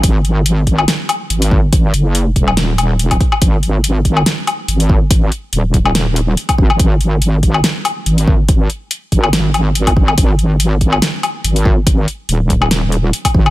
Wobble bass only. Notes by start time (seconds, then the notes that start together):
0.04 G#1
1.30 G#1
1.94 F#1
2.36 D#1
3.42 G#1
4.68 G#1
5.53 D#1
6.58 G#1
6.79 G#1
8.06 G#1
9.12 G#1
10.18 G#1
11.44 G#1
12.29 D#1
13.35 G#1